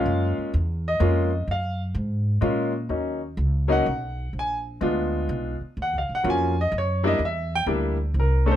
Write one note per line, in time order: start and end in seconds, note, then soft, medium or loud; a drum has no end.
0.00 0.49 G#3 medium
0.00 0.50 A#3 medium
0.00 0.50 C#4 medium
0.00 0.50 F4 medium
0.00 0.35 F5 medium
0.06 0.35 F#2 medium
0.38 muted upright bass stroke soft
0.54 0.99 E2 medium
0.88 1.45 D#5 medium
1.00 1.46 F2 loud
1.00 1.29 G#3 medium
1.00 1.29 A#3 medium
1.00 1.29 C#4 medium
1.00 1.29 F4 medium
1.48 1.94 F#2 medium
1.48 1.81 F5 medium
1.95 2.41 G#2 medium
2.41 2.89 A#2 loud
2.41 2.71 G#3 medium
2.41 2.71 A#3 medium
2.41 2.72 C#4 medium
2.41 2.71 F4 medium
2.89 3.36 D#2 medium
2.89 3.19 F#3 soft
2.89 3.19 A#3 soft
2.89 3.19 C#4 soft
2.89 3.19 D#4 medium
3.37 3.84 C#2 medium
3.68 3.83 F#3 medium
3.68 3.83 A#3 medium
3.68 3.83 C#4 medium
3.68 3.84 D#4 medium
3.72 4.30 F#5 medium
3.86 4.32 B1 medium
4.33 4.79 A#1 medium
4.39 4.57 G#5 medium
4.81 5.27 D2 medium
4.81 5.54 G#3 medium
4.81 5.54 B3 medium
4.81 5.55 D4 medium
4.81 5.55 F4 medium
5.29 5.59 B1 medium
5.61 muted upright bass stroke soft
5.77 5.95 D#2 medium
5.82 5.95 F#5 medium
5.93 6.09 C#2 medium
5.98 6.11 F5 medium
6.09 6.24 A#1 medium
6.15 6.27 F#5 medium
6.23 6.70 F2 loud
6.23 6.52 F#3 medium
6.23 6.53 A#3 medium
6.23 6.53 C#4 medium
6.23 6.53 F4 medium
6.30 6.58 G#5 loud
6.61 6.74 D#5 medium
6.72 7.18 F#2 medium
6.78 7.06 C#5 medium
7.03 7.17 G3 medium
7.03 7.18 A#3 medium
7.03 7.18 D4 medium
7.03 7.18 E4 medium
7.03 7.21 D#5 medium
7.19 7.65 E2 medium
7.25 7.53 E5 medium
7.55 7.64 G5 loud
7.66 8.13 D2 medium
7.66 7.96 G3 medium
7.66 7.96 A#3 medium
7.66 7.96 D4 medium
7.66 7.96 E4 medium
8.14 8.56 C2 medium
8.20 8.48 A#4 medium
8.46 8.56 A3 medium
8.46 8.56 C#4 medium
8.46 8.56 D4 medium
8.46 8.56 A4 medium
8.51 8.56 C5 medium